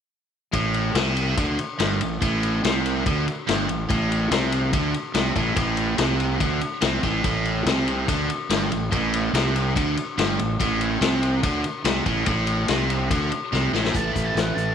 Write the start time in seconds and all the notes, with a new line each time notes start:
0.53 A1 A2, kick, ride
0.74 ride
0.94 C2 C3, snare, ride
1.17 ride
1.37 D2 D3, kick, ride
1.59 ride
1.79 G1 G2, snare, ride
2.01 A1 A2, ride
2.22 A1 A2, kick, ride
2.43 ride
2.64 C2 C3, snare, ride
2.86 ride
3.06 D2 D3, kick, ride
3.28 ride
3.48 G1 G2, snare, ride
3.69 A1 A2, ride
3.89 A1 A2, kick, ride
4.12 ride
4.31 C2 C3, snare, ride
4.52 ride
4.73 D2 D3, kick, ride
4.94 ride
5.14 C2 C3, snare, ride
5.36 A1 A2, kick, ride
5.56 A1 A2, kick, ride
5.77 ride
5.98 C2 C3, snare, ride
6.20 ride
6.40 D2 D3, kick, ride
6.61 ride
6.82 C2 C3, snare, ride
7.03 A1 A2, kick, ride
7.24 A1 A2, kick, ride
7.45 ride
7.66 C2 C3, snare, ride
7.88 ride
8.08 D2 D3, kick, ride
8.30 ride
8.50 G1 G2, snare, ride
8.71 A1 A2, ride
8.92 A1 A2, kick, ride
9.14 ride
9.33 C2 C3, snare, ride
9.56 ride
9.76 D2 D3, kick, ride
9.97 ride
10.18 G1 G2, snare, ride
10.39 A1 A2, ride
10.60 A1 A2, kick, ride
10.81 ride
11.01 C2 C3, snare, ride
11.23 ride
11.43 D2 D3, kick, ride
11.64 ride
11.84 C2 C3, snare, ride
12.06 A1 A2, kick, ride
12.26 A1 A2, kick, ride
12.47 ride
12.68 C2 C3, snare, ride
12.90 ride
13.10 D2 D3, kick, ride
13.32 ride
13.53 C2 C3, snare
13.73 A1 A2, snare
13.85 snare
13.93 A1 A2 E3 A3 A5, kick, closed hi-hat
14.12 A1 B5, kick, closed hi-hat
14.25 A5
14.35 A1, snare, closed hi-hat
14.41 F#5
14.54 A1 A5, closed hi-hat